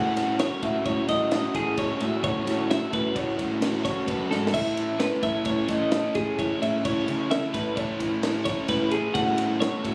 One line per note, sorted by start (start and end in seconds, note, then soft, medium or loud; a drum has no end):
0.00 0.46 A2 loud
0.00 0.39 A3 medium
0.00 0.19 C#4 loud
0.00 0.17 F#4 medium
0.00 0.16 A4 loud
0.00 0.39 F#5 loud
0.16 0.41 C#4 medium
0.16 0.41 F#4 medium
0.16 0.42 A4 medium
0.16 snare soft
0.16 ride medium
0.39 0.65 A3 medium
0.39 0.64 C#4 medium
0.39 0.63 F#4 medium
0.39 0.61 A4 medium
0.39 0.63 C#5 medium
0.39 snare loud
0.39 ride loud
0.62 0.80 A2 medium
0.62 0.84 A3 medium
0.62 0.85 C#4 medium
0.62 0.86 F#4 medium
0.62 0.87 A4 loud
0.62 0.85 E5 medium
0.62 kick medium
0.62 ride medium
0.85 1.03 A2 loud
0.85 1.10 A3 medium
0.85 1.09 C#4 medium
0.85 1.07 F#4 medium
0.85 1.07 A4 medium
0.85 1.09 C#5 medium
0.85 kick loud
0.85 ride loud
1.07 1.43 A2 loud
1.07 1.31 A3 medium
1.07 1.32 C#4 medium
1.07 1.32 F#4 medium
1.07 1.34 A4 loud
1.07 1.55 D#5 medium
1.07 kick medium
1.07 snare soft
1.07 ride medium
1.31 1.75 A3 medium
1.31 1.56 C#4 medium
1.31 1.54 F#4 medium
1.31 1.53 A4 medium
1.31 snare loud
1.31 ride loud
1.54 1.89 A2 medium
1.54 1.76 C#4 medium
1.54 1.76 F#4 medium
1.54 1.78 G#4 medium
1.54 1.78 A4 medium
1.54 kick medium
1.54 ride medium
1.76 2.22 A3 loud
1.76 2.01 C#4 loud
1.76 1.99 F#4 loud
1.76 1.98 A4 loud
1.76 2.01 C#5 medium
1.76 kick loud
1.76 ride loud
1.99 2.19 A2 medium
1.99 2.23 C#4 medium
1.99 2.24 F#4 medium
1.99 2.25 A4 medium
1.99 2.24 E5 medium
1.99 ride medium
2.23 2.41 A2 loud
2.23 2.68 A3 loud
2.23 2.48 C#4 loud
2.23 2.46 F#4 loud
2.23 2.45 A4 loud
2.23 2.70 C#5 loud
2.23 kick loud
2.23 ride loud
2.45 2.81 A2 medium
2.45 2.69 C#4 medium
2.45 2.69 F#4 medium
2.45 2.71 A4 medium
2.45 snare soft
2.45 ride medium
2.68 2.94 A3 medium
2.68 2.93 C#4 medium
2.68 2.91 F#4 medium
2.68 2.91 A4 medium
2.68 2.93 E5 medium
2.68 snare loud
2.68 ride loud
2.91 3.10 A2 medium
2.91 3.14 A3 medium
2.91 3.16 C#4 medium
2.91 3.15 F#4 medium
2.91 3.17 A4 loud
2.91 3.16 B4 medium
2.91 kick medium
2.91 ride medium
3.15 3.85 A2 loud
3.15 3.39 A3 medium
3.15 3.39 C#4 medium
3.15 3.37 F#4 medium
3.15 3.36 A4 medium
3.15 3.39 C#5 medium
3.15 kick loud
3.15 ride loud
3.36 3.60 A3 medium
3.36 3.60 C#4 medium
3.36 3.61 F#4 medium
3.36 3.62 A4 loud
3.36 kick medium
3.36 ride medium
3.60 4.06 A3 medium
3.60 3.87 C#4 medium
3.60 3.84 F#4 medium
3.60 3.84 A4 medium
3.60 snare loud
3.60 ride loud
3.84 4.07 C#4 medium
3.84 4.07 F#4 medium
3.84 4.09 A4 medium
3.84 4.08 C#5 medium
3.84 kick medium
3.84 snare soft
3.84 ride medium
4.07 4.28 F#2 medium
4.07 4.52 A3 loud
4.07 4.32 C#4 loud
4.07 4.30 F#4 loud
4.07 4.29 A4 loud
4.07 4.31 B4 medium
4.07 kick loud
4.07 ride loud
4.29 4.51 G#2 medium
4.29 4.53 C#4 medium
4.29 4.53 F#4 medium
4.29 4.55 A4 medium
4.29 4.54 A4 medium
4.29 snare medium
4.47 snare loud
4.53 5.06 A2 loud
4.53 4.98 A3 loud
4.53 4.78 C#4 loud
4.53 4.76 E4 loud
4.53 4.75 A4 loud
4.53 5.00 E5 loud
4.53 kick loud
4.53 crash loud
4.75 4.99 C#4 medium
4.75 5.00 E4 medium
4.75 5.01 A4 medium
4.75 ride medium
4.98 5.24 A3 medium
4.98 5.23 C#4 medium
4.98 5.22 E4 medium
4.98 5.21 A4 medium
4.98 5.23 B4 medium
4.98 snare loud
4.98 ride loud
5.21 5.40 A2 medium
5.21 5.44 A3 medium
5.21 5.45 C#4 medium
5.21 5.46 E4 medium
5.21 5.47 A4 loud
5.21 5.45 E5 medium
5.21 kick medium
5.21 ride medium
5.44 5.63 A2 medium
5.44 5.70 A3 medium
5.44 5.69 C#4 medium
5.44 5.68 E4 medium
5.44 5.67 A4 medium
5.44 5.69 C#5 medium
5.44 kick loud
5.44 ride loud
5.67 6.04 A2 medium
5.67 5.91 A3 medium
5.67 5.92 C#4 medium
5.67 5.93 E4 medium
5.67 5.94 A4 loud
5.67 6.15 D#5 medium
5.67 kick medium
5.67 snare soft
5.67 ride medium
5.91 6.36 A3 medium
5.91 6.16 C#4 medium
5.91 6.15 E4 medium
5.91 6.14 A4 medium
5.91 snare loud
5.91 ride loud
6.14 6.50 A2 medium
6.14 6.38 C#4 medium
6.14 6.38 E4 medium
6.14 6.38 G#4 medium
6.14 6.39 A4 medium
6.14 kick medium
6.14 ride medium
6.36 6.84 A3 loud
6.36 6.62 C#4 loud
6.36 6.61 E4 loud
6.36 6.60 A4 loud
6.36 6.62 C#5 medium
6.36 kick loud
6.36 ride loud
6.60 6.79 A2 loud
6.60 6.85 C#4 medium
6.60 6.86 E4 medium
6.60 6.87 A4 medium
6.60 6.85 E5 medium
6.60 ride medium
6.84 7.02 A2 loud
6.84 7.30 A3 loud
6.84 7.09 C#4 loud
6.84 7.08 E4 loud
6.84 7.06 A4 loud
6.84 7.30 C#5 loud
6.84 kick loud
6.84 ride loud
7.07 7.43 C#3 medium
7.07 7.31 C#4 medium
7.07 7.32 E4 medium
7.07 7.33 A4 medium
7.07 ride medium
7.30 7.55 A3 medium
7.30 7.54 C#4 medium
7.30 7.53 E4 medium
7.30 7.52 A4 medium
7.30 7.53 E5 medium
7.30 snare loud
7.30 ride loud
7.52 7.72 A2 medium
7.52 7.75 A3 medium
7.52 7.76 C#4 medium
7.52 7.77 E4 medium
7.52 7.78 A4 medium
7.52 7.76 B4 medium
7.52 kick medium
7.52 snare soft
7.52 ride medium
7.75 8.47 A2 loud
7.75 8.02 A3 medium
7.75 8.01 C#4 medium
7.75 8.00 E4 medium
7.75 7.99 A4 loud
7.75 8.00 C#5 medium
7.75 kick loud
7.75 ride loud
7.99 8.22 A3 medium
7.99 8.23 C#4 medium
7.99 8.24 E4 loud
7.99 8.24 A4 loud
7.99 kick medium
7.99 ride medium
8.22 8.67 A3 medium
8.22 8.48 C#4 medium
8.22 8.46 E4 medium
8.22 8.45 A4 medium
8.22 snare loud
8.22 ride loud
8.45 8.69 C#4 medium
8.45 8.69 E4 medium
8.45 8.70 A4 medium
8.45 8.69 C#5 medium
8.45 kick medium
8.45 snare soft
8.45 ride medium
8.68 9.04 A2 medium
8.68 9.13 A3 loud
8.68 8.94 C#4 loud
8.68 8.92 E4 loud
8.68 8.91 A4 loud
8.68 8.92 B4 medium
8.68 kick loud
8.68 snare soft
8.68 ride loud
8.91 9.15 C#4 medium
8.91 9.16 E4 medium
8.91 9.15 G#4 medium
8.91 9.17 A4 medium
8.91 ride medium
9.14 9.67 A2 loud
9.14 9.60 A3 medium
9.14 9.40 C#4 medium
9.14 9.38 F#4 loud
9.14 9.37 A4 loud
9.14 9.60 F#5 loud
9.14 kick loud
9.14 ride loud
9.37 9.61 C#4 medium
9.37 9.62 F#4 medium
9.37 9.63 A4 medium
9.37 ride medium
9.60 9.86 A3 medium
9.60 9.85 C#4 medium
9.60 9.84 F#4 medium
9.60 9.83 A4 medium
9.60 9.84 C#5 medium
9.60 snare loud
9.60 ride loud
9.83 9.95 A2 medium
9.83 9.95 A3 medium
9.83 9.95 C#4 medium
9.83 9.95 F#4 loud
9.83 9.95 A4 loud
9.83 9.95 E5 medium
9.83 kick medium
9.83 ride medium